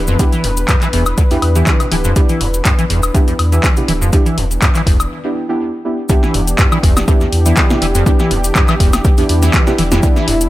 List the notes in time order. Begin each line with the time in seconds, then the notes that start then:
Already playing: D1 E3 B3 D4 B4
0.07 F2, cabasa
0.19 E2 B3 D4 E4 G4, kick, closed hi-hat, cabasa
0.33 E3, closed hi-hat, cabasa
0.44 E1 F2, open hi-hat
0.57 closed hi-hat, cabasa
0.69 G2, kick, clap, closed hi-hat, cabasa
0.82 E3, clap, closed hi-hat, cabasa
0.93 E1 E2, open hi-hat
1.06 closed hi-hat, cabasa, high woodblock
1.18 D2, kick, closed hi-hat, cabasa
1.31 E2 B3 D4 E4 G4, open hi-hat, cabasa
1.42 E2, open hi-hat, high woodblock
1.56 E3 B3 D4 E4 G4, closed hi-hat, cabasa
1.67 kick, clap, closed hi-hat, cabasa
1.80 B2, closed hi-hat, cabasa, high woodblock
1.91 D1 E3 B3 D4 E4 G4, open hi-hat
2.04 F2, closed hi-hat, cabasa
2.16 E2 B3 D4 E4 G4, kick, closed hi-hat, cabasa
2.29 E3, closed hi-hat, cabasa
2.41 E1 F2, open hi-hat
2.54 closed hi-hat, cabasa
2.65 G2, kick, clap, closed hi-hat, cabasa
2.78 E3, closed hi-hat, cabasa
2.90 E1 E2, open hi-hat
3.03 closed hi-hat, cabasa, high woodblock
3.14 D2 B3 D4 E4 G4, kick, closed hi-hat, cabasa
3.28 E2, closed hi-hat, cabasa
3.39 E2, open hi-hat, high woodblock
3.52 E3 B3 D4 E4 G4, closed hi-hat, cabasa
3.64 kick, clap, closed hi-hat, cabasa
3.77 B2 B3 D4 E4 G4, closed hi-hat, cabasa
3.88 D1 E3, open hi-hat
4.01 F2, cabasa
4.13 E2 B3 D4 E4 G4, kick, closed hi-hat, cabasa
4.26 E3, closed hi-hat, cabasa
4.37 E1 F2, open hi-hat
4.51 closed hi-hat, cabasa
4.62 G2, kick, clap, closed hi-hat, cabasa
4.75 E3, clap, closed hi-hat, cabasa
4.86 E1 E2, kick, open hi-hat
5.00 closed hi-hat, cabasa, high woodblock
5.24 B3 D4 E4 G4
5.49 B3 D4 E4 G4
5.85 B3 D4 E4 G4
6.09 E2 E3 B3 D4 E4 G4, kick, closed hi-hat, cabasa
6.23 E3, snare, cabasa
6.34 E1 F2, open hi-hat
6.47 closed hi-hat, cabasa
6.58 G2, kick, clap, closed hi-hat, cabasa
6.72 E3, cabasa, high woodblock
6.83 E1 E2, kick, open hi-hat
6.97 snare, closed hi-hat, cabasa, high woodblock
7.08 D2 B3 D4 E4 G4, kick, closed hi-hat, cabasa
7.21 E2, snare, cabasa
7.32 E2, open hi-hat
7.46 E3 B3 D4 E4 G4, closed hi-hat, cabasa
7.57 kick, clap, closed hi-hat, cabasa
7.70 B2 B3 D4 E4 G4, snare, cabasa
7.82 E1 E3, open hi-hat
7.95 F2, closed hi-hat, cabasa
8.06 E2 B3 D4 E4 G4, kick, closed hi-hat, cabasa
8.19 E3, snare, cabasa
8.31 E1 F2, open hi-hat
8.44 closed hi-hat, cabasa
8.55 G2, kick, clap, closed hi-hat, cabasa
8.68 E3, clap, cabasa, high woodblock
8.80 E1 E2, kick, open hi-hat
8.93 snare, closed hi-hat, cabasa, high woodblock
9.04 D2, kick, closed hi-hat, cabasa
9.17 E2 B3 D4 E4 G4, open hi-hat, cabasa
9.29 E2 B3 D4 E4 G4, open hi-hat
9.42 E3, snare, closed hi-hat, cabasa
9.53 kick, clap, closed hi-hat, cabasa
9.67 B2 B3 D4 E4 G4, snare, cabasa
9.78 E1 E3, open hi-hat
9.91 F2 B3 D4 E4 G4, snare, closed hi-hat, cabasa
10.03 E2 B3 D4 E4 G4, kick, closed hi-hat, cabasa
10.16 E3, snare, cabasa
10.28 E1 F2, open hi-hat
10.41 closed hi-hat, cabasa